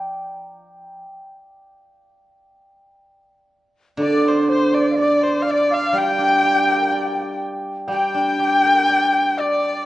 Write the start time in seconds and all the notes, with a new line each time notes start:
Already playing: F3 D5 F5 G5 A#5
3.97 D3 D5
4.01 D5
4.25 C5
4.48 C5
4.72 D5
4.91 F5
4.96 D5
5.01 D5
5.21 C5
5.42 D5 F5
5.51 D5
5.70 F5
5.92 G3 G5
5.98 G5
6.09 G5
6.18 D4 G5
6.24 G5
6.32 G5
6.39 G5
6.43 G4
6.53 G5
6.61 G5
6.67 A#4 G5
6.76 G5
6.82 G5
6.89 D5 G5
7.05 G5
7.13 G5
7.21 G5
7.88 G3 G5
7.93 G5
8.14 D4
8.39 G4
8.64 A#4
8.88 D5
9.37 D5